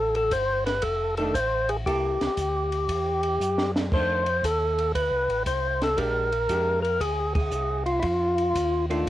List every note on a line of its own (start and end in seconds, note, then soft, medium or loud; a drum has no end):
0.00 0.30 A1 medium
0.00 0.15 A4 medium
0.15 0.33 A4 medium
0.15 ride soft
0.31 0.81 G1 medium
0.31 0.64 C5 medium
0.31 kick soft
0.31 hi-hat pedal medium
0.31 ride medium
0.66 0.84 B4 medium
0.66 snare soft
0.66 ride soft
0.82 1.33 F1 medium
0.82 1.15 A4 medium
0.82 kick soft
0.82 ride medium
1.17 1.33 D#3 medium
1.17 1.34 A3 medium
1.17 1.34 D4 medium
1.17 1.35 A4 medium
1.17 ride soft
1.34 1.84 A1 medium
1.34 1.70 C5 medium
1.34 kick soft
1.34 hi-hat pedal medium
1.34 ride medium
1.69 1.77 G#4 medium
1.69 ride soft
1.86 2.18 C2 medium
1.86 2.18 A#3 soft
1.86 2.18 E4 medium
1.86 3.71 G4 medium
1.86 2.18 A4 medium
1.86 kick soft
1.86 ride soft
2.21 2.29 C2 soft
2.21 snare soft
2.21 ride soft
2.37 2.87 D2 medium
2.37 kick soft
2.37 hi-hat pedal soft
2.37 ride soft
2.72 ride soft
2.88 3.39 E2 medium
2.88 kick soft
2.88 ride medium
3.23 ride soft
3.40 3.90 F#2 medium
3.40 hi-hat pedal medium
3.58 snare medium
3.76 snare medium
3.92 4.42 F2 medium
3.92 4.24 D#3 medium
3.92 4.24 A3 medium
3.92 4.24 D4 medium
3.92 4.46 C5 loud
3.92 kick medium
3.92 crash medium
4.26 ride soft
4.43 4.93 D#2 medium
4.43 4.92 A4 medium
4.43 kick soft
4.43 hi-hat pedal medium
4.43 ride medium
4.79 ride soft
4.95 5.12 D2 medium
4.95 5.43 B4 medium
4.95 kick soft
4.95 ride medium
5.11 5.29 C2 medium
5.28 5.45 A1 medium
5.28 ride soft
5.46 5.97 C2 medium
5.46 5.83 C5 medium
5.46 kick soft
5.46 hi-hat pedal medium
5.46 ride medium
5.82 6.00 A4 medium
5.82 snare soft
5.82 ride soft
5.97 6.48 A#1 medium
5.97 6.29 G#3 medium
5.97 6.29 D4 soft
5.97 6.30 G4 medium
5.97 6.80 A#4 medium
5.97 kick soft
5.97 ride medium
6.32 ride soft
6.49 6.99 F2 medium
6.49 6.81 G#3 medium
6.49 6.81 D4 soft
6.49 6.81 G4 medium
6.49 kick soft
6.49 hi-hat pedal soft
6.49 ride medium
6.82 7.01 A#4 medium
6.82 ride soft
7.00 7.51 D2 medium
7.00 7.33 G#4 medium
7.00 kick soft
7.00 ride medium
7.35 7.83 G#4 medium
7.35 kick medium
7.35 ride medium
7.51 8.02 C2 medium
7.51 hi-hat pedal medium
7.86 7.99 F4 medium
7.86 ride soft
7.99 8.54 F2 medium
7.99 8.04 E4 medium
7.99 8.86 F4 medium
7.99 kick soft
7.99 ride medium
8.38 ride soft
8.55 9.06 D#2 medium
8.55 kick soft
8.55 hi-hat pedal medium
8.55 ride medium
8.90 9.05 D#3 medium
8.90 9.06 A3 medium
8.90 9.05 D4 medium
8.90 9.09 F4 medium
8.90 ride soft